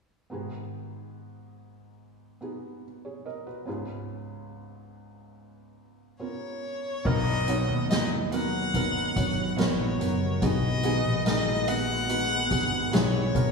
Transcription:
0.30 felt piano G#2 D#3 B3 D#4 F#4 G#4
2.41 felt piano B3 D#4 F#4 G#4
3.05 felt piano G#4 C#5
3.26 felt piano A#4 D#5
3.47 felt piano F#4 B4
3.65 felt piano C#2 G#2 B3 C#4 F4 G#4
6.20 felt piano B3 C#4 F4 A#4, violin C#5
7.05 fingered electric bass B1, steel-string acoustic guitar B2, analog synth pad D#3 F#3 B3 F#4, felt piano B3 D#4 F#4 A#4, violin D#5, kick, crash
7.47 felt piano B3 D#4 F#4 C#5, closed hi-hat
7.69 fingered electric bass D#2
7.90 felt piano B3 D#4 F#4 G#4, steel-string acoustic guitar B3 D#4 A#4, violin D#5, snare, closed hi-hat
8.31 felt piano B3 D#4 F#4 A#4, violin F#5, closed hi-hat
8.74 felt piano B3 D#4 F#4 A#4, steel-string acoustic guitar B3, kick, closed hi-hat
9.16 fingered electric bass G#1, felt piano B3 D#4 F#4 C#5, steel-string acoustic guitar D#4, kick, closed hi-hat
9.57 fingered electric bass A#1, felt piano B3 D#4 F#4 A#4, steel-string acoustic guitar B3 D#4 A#4, violin C#5, snare, closed hi-hat
9.99 fingered electric bass F#1, felt piano B3 D#4 F#4 B4, steel-string acoustic guitar A#4, closed hi-hat
10.42 fingered electric bass B1, felt piano D#3 B3 D#4 F#4 G#4, analog synth pad G#3, violin D#5, kick, closed hi-hat
10.83 felt piano B3 D#4 F#4 G#4, closed hi-hat
11.05 fingered electric bass A#1
11.25 felt piano B3 D#4 F#4 A#4, steel-string acoustic guitar B3 D#4 G#4, violin D#5, snare, closed hi-hat
11.67 felt piano B3 D#4 F#4 B4, violin F#5, closed hi-hat
12.08 felt piano B3 D#4 F#4 B4, steel-string acoustic guitar B3, closed hi-hat
12.49 fingered electric bass G#1, felt piano B3 D#4 F#4 G#4, steel-string acoustic guitar D#4, kick, closed hi-hat
12.92 fingered electric bass B1, felt piano B3 D#4 F#4 G#4, steel-string acoustic guitar B3 D#4 G#4, violin C#5, snare, closed hi-hat
13.34 fingered electric bass B1, steel-string acoustic guitar B2, felt piano B3 D#4 F#4 A#4, analog synth pad F#4 A#4, kick, closed hi-hat

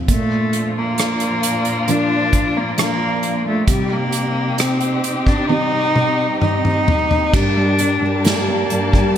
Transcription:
Already playing: felt piano F3 A#3 C4
0.08 felt piano A#2, string section A#2 F3 D4 F4, cello A3, kick, closed hi-hat
0.53 closed hi-hat
0.78 cello A#3
0.98 cross-stick, closed hi-hat
1.20 closed hi-hat
1.43 closed hi-hat
1.65 closed hi-hat
1.88 felt piano F3 A#3 D4, cello D4, closed hi-hat
2.33 kick, closed hi-hat
2.57 cello A#3
2.78 felt piano F3 A#3 D4, cello A#3, cross-stick, closed hi-hat
3.23 closed hi-hat
3.48 cello A3
3.67 felt piano C3, string section C3 C4 D#4 G4, cello G3, kick, closed hi-hat
3.92 cello A#3
4.12 closed hi-hat
4.58 cello C4, cross-stick, closed hi-hat
4.80 closed hi-hat
5.04 closed hi-hat
5.27 cello D4, kick
5.49 felt piano G3 C4 D#4, cello D#4, high tom
5.96 mid tom
6.41 felt piano G3 C4 D#4, cello D#4, mid tom
6.65 mid tom
6.88 floor tom
7.11 floor tom
7.34 cello section G2, felt piano G3, cello D4, string section G4 A#4 D5 A5, kick, crash
7.57 felt piano G3
7.79 felt piano G3, closed hi-hat
8.02 cello section G2, felt piano G3
8.25 felt piano G3, cello A#3, snare, closed hi-hat
8.48 felt piano G3
8.70 cello section G2, felt piano G3, closed hi-hat
8.93 felt piano G3, kick

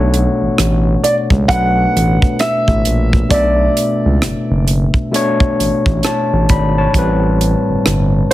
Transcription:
Already playing: analog synth bass B1, tine electric piano B2 A3 D4 A4 C#5 F#5
0.14 closed hi-hat
0.42 analog synth bass A1
0.58 analog synth bass A1, cross-stick, closed hi-hat
1.04 grand piano D5, closed hi-hat
1.30 analog synth bass C#2, kick
1.48 analog synth bass B1, tine electric piano B2 A3 D4, grand piano F#5, kick, closed hi-hat
1.53 tine electric piano B4
1.96 analog synth bass A1, closed hi-hat
2.22 kick
2.39 grand piano E5, cross-stick, closed hi-hat
2.68 analog synth bass A1, kick
2.85 analog synth bass A#1, closed hi-hat
3.13 kick
3.29 analog synth bass B1, tine electric piano B2 A3 D4, grand piano D5, kick, closed hi-hat
3.34 tine electric piano E5
3.77 closed hi-hat
4.06 analog synth bass C#2
4.22 analog synth bass F#1, cross-stick, closed hi-hat
4.51 analog synth bass F#1
4.68 closed hi-hat
4.94 kick
5.11 tine electric piano B2 A3 D4, closed hi-hat
5.16 tine electric piano C#5
5.40 kick
5.60 analog synth bass A1, closed hi-hat
5.86 analog synth bass A1, kick
6.03 tine electric piano C#5 A5, cross-stick, closed hi-hat
6.33 analog synth bass A1
6.49 analog synth bass G#1, tine electric piano D5 B5, kick, closed hi-hat
6.78 tine electric piano C#5 A5
6.93 analog synth bass A1, tine electric piano A2 G3 C4, kick, closed hi-hat
6.98 tine electric piano B4
7.41 closed hi-hat
7.69 analog synth bass G1
7.86 analog synth bass G1, cross-stick, closed hi-hat

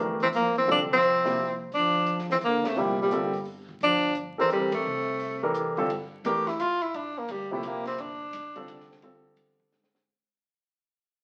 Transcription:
Already playing: upright bass G1
0.00 grand piano E3 A3 D4 G4 A#4
0.20 trombone E3, tenor saxophone C4, open hi-hat
0.33 upright bass G#1, trombone F3, tenor saxophone A#3, closed hi-hat
0.55 trombone E3, tenor saxophone C4, open hi-hat
0.67 upright bass C2, grand piano D3 G3 C4 F4 A4, trombone F3, tenor saxophone D4, open hi-hat
0.92 trombone F3, tenor saxophone C4
1.02 closed hi-hat
1.25 grand piano C3 F3 A#3 E4 G4, snare, open hi-hat
1.37 open hi-hat
1.72 upright bass G1, trombone F3, tenor saxophone D4, open hi-hat
2.06 closed hi-hat
2.19 snare
2.30 trombone E3, tenor saxophone C4, snare
2.41 upright bass F#1, trombone D3, tenor saxophone A#3, closed hi-hat
2.64 trombone C3, tenor saxophone A3, snare
2.76 upright bass G1, trombone A#2, grand piano C3 F3 A#3 E4 G4, tenor saxophone G3, open hi-hat
3.02 trombone A#2, tenor saxophone G3
3.11 grand piano D3 G3 C4 F4 A4, closed hi-hat
3.33 open hi-hat
3.45 open hi-hat
3.69 kick
3.81 upright bass G1, trombone F3, tenor saxophone D4, open hi-hat
4.15 closed hi-hat
4.38 grand piano E3 D4 G4 A4 A#4, trombone E3, tenor saxophone C4
4.50 trombone C3, tenor saxophone G3, closed hi-hat
4.72 trombone C3, tenor saxophone A3, kick, ride
4.85 upright bass C2
5.20 open hi-hat
5.43 grand piano E3 D4 G4 A4 A#4
5.54 closed hi-hat
5.77 grand piano D3 G3 C4 F4 A4, open hi-hat
5.89 upright bass G2, ride
6.24 upright bass A2, grand piano E3 A3 D4 G4 A#4, tenor saxophone G4, hi-hat pedal, ride
6.47 tenor saxophone E4, snare, ride
6.60 upright bass A#2, tenor saxophone F4, hi-hat pedal, ride
6.82 tenor saxophone E4, ride
6.94 upright bass A#1, tenor saxophone D4, ride
7.18 tenor saxophone A#3
7.28 upright bass D2, tenor saxophone G3, ride
7.51 grand piano C3 F3 A#3 E4 G4, tenor saxophone A3
7.63 upright bass A#1, tenor saxophone A#3, hi-hat pedal, ride
7.85 tenor saxophone C4, snare, ride
7.98 upright bass G1, tenor saxophone D4, ride
8.33 upright bass A1, hi-hat pedal, ride
8.56 grand piano D3 G3 C4 F4 A4, ride
8.68 upright bass F1, hi-hat pedal, ride
8.80 snare
8.91 snare
9.02 upright bass F2, grand piano D3 G3 C4 F4 A4, ride
9.25 muted upright bass stroke
9.36 upright bass E2, ride
9.60 kick
9.72 upright bass G#2, snare, hi-hat pedal
9.83 snare
9.95 snare

